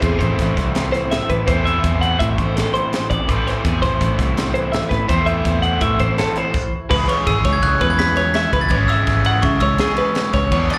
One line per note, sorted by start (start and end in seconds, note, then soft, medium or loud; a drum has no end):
0.00 0.18 E2 medium
0.00 1.11 A2 medium
0.00 1.45 A2 medium
0.00 0.93 E3 medium
0.00 1.46 E3 medium
0.00 1.47 A3 medium
0.00 1.48 C4 loud
0.00 0.76 C4 medium
0.00 1.49 E4 loud
0.00 0.40 F#4 medium
0.00 0.19 G#4 medium
0.00 1.49 C5 loud
0.00 kick medium
0.00 closed hi-hat medium
0.19 0.37 A1 medium
0.19 0.58 E4 medium
0.19 0.56 C5 medium
0.19 kick medium
0.19 closed hi-hat medium
0.39 0.55 A1 medium
0.39 2.20 F#4 medium
0.39 kick loud
0.39 snare soft
0.39 closed hi-hat medium
0.57 1.20 C2 loud
0.57 2.03 E4 medium
0.57 kick medium
0.57 snare soft
0.57 closed hi-hat medium
0.75 1.84 C4 medium
0.75 snare loud
0.75 closed hi-hat medium
0.92 1.30 E3 medium
0.92 1.11 C5 medium
0.92 snare soft
0.92 closed hi-hat medium
1.11 1.48 A2 medium
1.11 1.29 E5 medium
1.11 snare loud
1.11 closed hi-hat loud
1.30 1.45 A1 medium
1.30 1.65 E3 medium
1.30 1.47 B4 medium
1.30 kick medium
1.30 closed hi-hat medium
1.46 1.79 E2 medium
1.46 3.27 A2 medium
1.46 2.93 A2 medium
1.46 3.27 E3 medium
1.46 3.28 A3 medium
1.46 3.29 C4 loud
1.46 3.29 E4 loud
1.46 1.65 C5 medium
1.46 kick loud
1.46 closed hi-hat medium
1.50 3.30 C5 loud
1.65 2.74 E3 medium
1.65 2.01 E5 medium
1.65 closed hi-hat medium
1.84 2.15 E2 medium
1.84 2.57 C4 medium
1.84 kick loud
1.84 closed hi-hat loud
2.01 2.39 E4 medium
2.01 2.19 F#5 medium
2.01 closed hi-hat medium
2.19 2.36 A2 medium
2.19 4.02 F#4 medium
2.19 2.38 E5 medium
2.19 kick loud
2.19 closed hi-hat loud
2.38 2.54 A1 medium
2.38 3.82 E4 medium
2.38 2.56 C5 medium
2.38 kick medium
2.38 closed hi-hat medium
2.56 3.65 C4 medium
2.56 2.73 A4 medium
2.56 snare loud
2.56 closed hi-hat loud
2.74 3.10 E3 medium
2.74 3.10 C5 medium
2.74 closed hi-hat medium
2.93 3.29 A2 medium
2.93 snare loud
2.93 closed hi-hat loud
3.10 3.26 A1 medium
3.10 3.47 E3 medium
3.10 3.28 D5 medium
3.10 kick medium
3.10 closed hi-hat medium
3.27 3.44 A1 medium
3.27 5.06 A2 loud
3.27 4.73 A2 medium
3.27 5.07 E3 medium
3.27 5.07 A3 loud
3.27 5.08 C4 medium
3.27 5.09 E4 medium
3.27 3.47 B4 loud
3.27 5.09 C5 loud
3.27 kick loud
3.27 closed hi-hat medium
3.47 4.54 E3 medium
3.47 3.65 C5 medium
3.47 snare soft
3.47 closed hi-hat medium
3.65 3.80 E2 medium
3.65 4.36 C4 medium
3.65 3.82 G#4 medium
3.65 kick loud
3.65 closed hi-hat medium
3.82 3.98 A1 loud
3.82 4.19 E4 medium
3.82 4.18 C5 medium
3.82 kick medium
3.82 snare soft
3.82 closed hi-hat medium
4.01 4.16 A1 medium
4.01 5.82 F#4 medium
4.01 kick loud
4.01 closed hi-hat loud
4.19 4.82 C2 loud
4.19 5.07 E4 medium
4.19 kick medium
4.19 snare soft
4.19 closed hi-hat medium
4.37 5.07 C4 medium
4.37 snare loud
4.37 closed hi-hat loud
4.54 4.91 E3 medium
4.54 4.73 C5 medium
4.54 closed hi-hat medium
4.72 5.07 A2 medium
4.72 4.91 E5 medium
4.72 snare loud
4.72 closed hi-hat medium
4.89 5.07 A1 medium
4.89 5.28 E3 medium
4.89 5.08 B4 medium
4.89 kick medium
4.89 snare soft
4.89 closed hi-hat medium
5.07 5.41 E2 medium
5.07 6.52 A2 medium
5.07 6.52 E3 medium
5.07 6.53 A3 medium
5.07 6.53 C4 loud
5.07 6.53 E4 loud
5.07 5.27 C5 medium
5.07 6.54 C5 loud
5.07 kick loud
5.07 closed hi-hat loud
5.26 6.34 E3 medium
5.26 5.62 E5 medium
5.26 closed hi-hat medium
5.45 5.77 E2 medium
5.45 6.18 C4 medium
5.45 kick loud
5.45 snare soft
5.45 closed hi-hat medium
5.62 5.99 E4 medium
5.62 5.81 F#5 medium
5.62 closed hi-hat medium
5.81 5.97 A2 medium
5.81 8.36 F#4 medium
5.81 6.00 E5 medium
5.81 kick loud
5.81 closed hi-hat medium
5.99 6.15 A1 medium
5.99 6.52 E4 medium
5.99 6.18 C5 medium
5.99 kick medium
5.99 closed hi-hat medium
6.18 6.52 C4 medium
6.18 6.38 A4 medium
6.18 snare loud
6.18 closed hi-hat medium
6.36 8.35 E3 medium
6.36 6.73 C5 medium
6.36 closed hi-hat medium
6.54 kick loud
6.54 crash loud
6.89 7.06 C#2 medium
6.89 8.68 C#3 medium
6.89 8.70 E3 loud
6.89 8.70 G#3 loud
6.89 8.70 C#4 medium
6.89 8.71 G#4 loud
6.89 7.08 B4 medium
6.89 kick loud
6.89 crash loud
7.08 7.26 C#5 medium
7.08 7.27 C#6 medium
7.08 ride medium
7.27 7.42 G#1 loud
7.27 7.45 G#4 medium
7.27 7.55 E6 medium
7.27 kick loud
7.27 snare soft
7.27 ride loud
7.45 7.60 C#2 loud
7.45 7.81 C#5 medium
7.45 kick medium
7.45 snare soft
7.45 ride loud
7.53 7.62 G#6 loud
7.62 7.79 C#2 medium
7.62 7.91 F#6 loud
7.62 kick loud
7.62 ride loud
7.81 8.44 E2 loud
7.81 8.16 B4 medium
7.81 kick medium
7.81 ride medium
7.90 7.99 G#6 loud
7.99 8.16 B6 loud
7.99 snare loud
7.99 ride loud
8.16 8.35 C#5 medium
8.16 8.35 G#6 loud
8.16 snare soft
8.16 ride medium
8.34 8.53 E5 medium
8.34 8.60 B6 loud
8.34 snare loud
8.34 ride loud
8.53 8.69 C#2 loud
8.53 8.71 B4 medium
8.53 kick medium
8.53 ride medium
8.61 8.71 A6 loud
8.69 9.03 G#1 loud
8.69 10.50 C#3 medium
8.69 10.51 E3 loud
8.69 10.51 G#3 loud
8.69 10.51 C#4 loud
8.69 10.52 G#4 loud
8.69 8.90 C#5 medium
8.69 8.89 G#6 loud
8.69 kick loud
8.69 ride loud
8.88 9.26 E5 medium
8.88 9.45 E6 medium
8.88 snare soft
8.88 ride medium
9.07 9.39 G#1 medium
9.07 kick loud
9.07 snare soft
9.07 ride loud
9.25 9.45 F#5 medium
9.25 ride medium
9.42 9.59 C#3 loud
9.42 9.62 E5 medium
9.42 9.62 C#6 medium
9.42 kick loud
9.42 ride loud
9.60 9.77 C#2 medium
9.60 9.80 C#5 medium
9.60 9.80 E6 medium
9.60 kick medium
9.60 ride medium
9.78 9.98 G#4 medium
9.78 10.31 C#6 medium
9.78 snare loud
9.78 ride loud
9.97 10.34 B4 medium
9.97 ride medium
10.15 snare loud
10.15 ride loud
10.33 10.50 C#2 loud
10.33 10.52 C#5 medium
10.33 kick medium
10.33 snare soft
10.33 ride medium
10.51 10.68 E2 medium
10.51 10.78 E3 medium
10.51 10.78 B3 loud
10.51 10.78 D4 loud
10.51 10.78 G#4 loud
10.51 10.70 C#5 medium
10.51 kick loud
10.51 ride loud
10.70 10.78 D5 medium
10.70 10.78 A6 loud
10.70 snare soft
10.70 ride medium